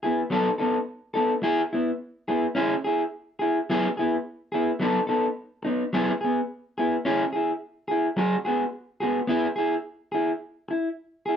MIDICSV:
0, 0, Header, 1, 3, 480
1, 0, Start_track
1, 0, Key_signature, 4, "major"
1, 0, Tempo, 561272
1, 263, Time_signature, 4, 2, 24, 8
1, 9719, End_track
2, 0, Start_track
2, 0, Title_t, "Clean electric guitar"
2, 0, Program_c, 0, 27
2, 24, Note_on_c, 0, 68, 55
2, 35, Note_on_c, 0, 64, 48
2, 49, Note_on_c, 0, 59, 46
2, 176, Note_off_c, 0, 68, 0
2, 181, Note_off_c, 0, 64, 0
2, 188, Note_off_c, 0, 59, 0
2, 258, Note_on_c, 0, 54, 79
2, 265, Note_on_c, 0, 59, 78
2, 275, Note_on_c, 0, 63, 84
2, 275, Note_on_c, 0, 69, 84
2, 412, Note_off_c, 0, 54, 0
2, 416, Note_off_c, 0, 59, 0
2, 421, Note_off_c, 0, 63, 0
2, 421, Note_off_c, 0, 69, 0
2, 499, Note_on_c, 0, 69, 59
2, 509, Note_on_c, 0, 63, 51
2, 520, Note_on_c, 0, 59, 51
2, 653, Note_off_c, 0, 69, 0
2, 658, Note_off_c, 0, 63, 0
2, 664, Note_off_c, 0, 59, 0
2, 973, Note_on_c, 0, 69, 58
2, 984, Note_on_c, 0, 63, 50
2, 997, Note_on_c, 0, 59, 46
2, 1131, Note_off_c, 0, 69, 0
2, 1136, Note_off_c, 0, 63, 0
2, 1143, Note_off_c, 0, 59, 0
2, 1223, Note_on_c, 0, 64, 87
2, 1228, Note_on_c, 0, 68, 95
2, 1376, Note_off_c, 0, 64, 0
2, 1378, Note_off_c, 0, 68, 0
2, 1477, Note_on_c, 0, 64, 54
2, 1490, Note_on_c, 0, 59, 48
2, 1623, Note_off_c, 0, 64, 0
2, 1629, Note_off_c, 0, 59, 0
2, 1949, Note_on_c, 0, 68, 57
2, 1954, Note_on_c, 0, 64, 52
2, 1963, Note_on_c, 0, 59, 49
2, 2100, Note_off_c, 0, 68, 0
2, 2102, Note_off_c, 0, 64, 0
2, 2106, Note_off_c, 0, 59, 0
2, 2180, Note_on_c, 0, 61, 80
2, 2188, Note_on_c, 0, 64, 91
2, 2195, Note_on_c, 0, 68, 90
2, 2335, Note_off_c, 0, 61, 0
2, 2339, Note_off_c, 0, 64, 0
2, 2343, Note_off_c, 0, 68, 0
2, 2433, Note_on_c, 0, 68, 65
2, 2452, Note_on_c, 0, 64, 48
2, 2582, Note_off_c, 0, 68, 0
2, 2592, Note_off_c, 0, 64, 0
2, 2902, Note_on_c, 0, 68, 58
2, 2922, Note_on_c, 0, 64, 53
2, 3057, Note_off_c, 0, 68, 0
2, 3067, Note_off_c, 0, 64, 0
2, 3161, Note_on_c, 0, 54, 88
2, 3165, Note_on_c, 0, 64, 82
2, 3168, Note_on_c, 0, 59, 84
2, 3173, Note_on_c, 0, 68, 99
2, 3307, Note_off_c, 0, 54, 0
2, 3309, Note_off_c, 0, 64, 0
2, 3310, Note_off_c, 0, 59, 0
2, 3313, Note_off_c, 0, 68, 0
2, 3398, Note_on_c, 0, 68, 56
2, 3415, Note_on_c, 0, 64, 56
2, 3421, Note_on_c, 0, 59, 51
2, 3545, Note_off_c, 0, 68, 0
2, 3554, Note_off_c, 0, 64, 0
2, 3557, Note_off_c, 0, 59, 0
2, 3865, Note_on_c, 0, 68, 55
2, 3883, Note_on_c, 0, 64, 56
2, 3889, Note_on_c, 0, 59, 47
2, 4019, Note_off_c, 0, 68, 0
2, 4028, Note_off_c, 0, 64, 0
2, 4031, Note_off_c, 0, 59, 0
2, 4101, Note_on_c, 0, 54, 84
2, 4113, Note_on_c, 0, 59, 85
2, 4116, Note_on_c, 0, 63, 90
2, 4123, Note_on_c, 0, 69, 87
2, 4257, Note_off_c, 0, 54, 0
2, 4263, Note_off_c, 0, 59, 0
2, 4265, Note_off_c, 0, 63, 0
2, 4268, Note_off_c, 0, 69, 0
2, 4336, Note_on_c, 0, 69, 60
2, 4350, Note_on_c, 0, 63, 53
2, 4357, Note_on_c, 0, 59, 48
2, 4495, Note_off_c, 0, 69, 0
2, 4502, Note_off_c, 0, 63, 0
2, 4505, Note_off_c, 0, 59, 0
2, 4828, Note_on_c, 0, 63, 60
2, 4840, Note_on_c, 0, 59, 49
2, 4981, Note_off_c, 0, 63, 0
2, 4987, Note_off_c, 0, 59, 0
2, 5070, Note_on_c, 0, 54, 82
2, 5080, Note_on_c, 0, 59, 91
2, 5081, Note_on_c, 0, 68, 97
2, 5086, Note_on_c, 0, 64, 80
2, 5222, Note_off_c, 0, 54, 0
2, 5227, Note_off_c, 0, 59, 0
2, 5227, Note_off_c, 0, 68, 0
2, 5229, Note_off_c, 0, 64, 0
2, 5309, Note_on_c, 0, 68, 61
2, 5339, Note_on_c, 0, 59, 50
2, 5461, Note_off_c, 0, 68, 0
2, 5476, Note_off_c, 0, 59, 0
2, 5796, Note_on_c, 0, 68, 57
2, 5809, Note_on_c, 0, 64, 50
2, 5812, Note_on_c, 0, 59, 49
2, 5944, Note_off_c, 0, 68, 0
2, 5951, Note_off_c, 0, 64, 0
2, 5952, Note_off_c, 0, 59, 0
2, 6029, Note_on_c, 0, 61, 87
2, 6037, Note_on_c, 0, 64, 94
2, 6040, Note_on_c, 0, 68, 93
2, 6181, Note_off_c, 0, 61, 0
2, 6185, Note_off_c, 0, 64, 0
2, 6187, Note_off_c, 0, 68, 0
2, 6265, Note_on_c, 0, 68, 53
2, 6292, Note_on_c, 0, 64, 47
2, 6419, Note_off_c, 0, 68, 0
2, 6432, Note_off_c, 0, 64, 0
2, 6738, Note_on_c, 0, 68, 58
2, 6767, Note_on_c, 0, 64, 51
2, 6895, Note_off_c, 0, 68, 0
2, 6909, Note_off_c, 0, 64, 0
2, 6984, Note_on_c, 0, 54, 86
2, 6993, Note_on_c, 0, 68, 92
2, 6999, Note_on_c, 0, 66, 86
2, 7138, Note_off_c, 0, 54, 0
2, 7142, Note_off_c, 0, 68, 0
2, 7145, Note_off_c, 0, 66, 0
2, 7226, Note_on_c, 0, 68, 59
2, 7235, Note_on_c, 0, 66, 51
2, 7246, Note_on_c, 0, 59, 48
2, 7379, Note_off_c, 0, 68, 0
2, 7383, Note_off_c, 0, 66, 0
2, 7389, Note_off_c, 0, 59, 0
2, 7700, Note_on_c, 0, 68, 57
2, 7712, Note_on_c, 0, 66, 52
2, 7724, Note_on_c, 0, 59, 49
2, 7855, Note_off_c, 0, 68, 0
2, 7861, Note_off_c, 0, 66, 0
2, 7867, Note_off_c, 0, 59, 0
2, 7931, Note_on_c, 0, 59, 76
2, 7942, Note_on_c, 0, 64, 81
2, 7953, Note_on_c, 0, 68, 86
2, 8090, Note_off_c, 0, 59, 0
2, 8096, Note_off_c, 0, 64, 0
2, 8101, Note_off_c, 0, 68, 0
2, 8174, Note_on_c, 0, 68, 61
2, 8195, Note_on_c, 0, 64, 44
2, 8332, Note_off_c, 0, 68, 0
2, 8342, Note_off_c, 0, 64, 0
2, 8653, Note_on_c, 0, 68, 54
2, 8676, Note_on_c, 0, 64, 49
2, 8811, Note_off_c, 0, 68, 0
2, 8822, Note_off_c, 0, 64, 0
2, 9157, Note_on_c, 0, 64, 45
2, 9302, Note_off_c, 0, 64, 0
2, 9627, Note_on_c, 0, 68, 53
2, 9654, Note_on_c, 0, 64, 44
2, 9719, Note_off_c, 0, 64, 0
2, 9719, Note_off_c, 0, 68, 0
2, 9719, End_track
3, 0, Start_track
3, 0, Title_t, "Muted clean electric guitar strokes"
3, 1214, Note_on_c, 9, 29, 81
3, 1299, Note_off_c, 9, 29, 0
3, 4812, Note_on_c, 9, 29, 55
3, 4898, Note_off_c, 9, 29, 0
3, 6985, Note_on_c, 9, 29, 88
3, 7071, Note_off_c, 9, 29, 0
3, 9138, Note_on_c, 9, 29, 60
3, 9223, Note_off_c, 9, 29, 0
3, 9719, End_track
0, 0, End_of_file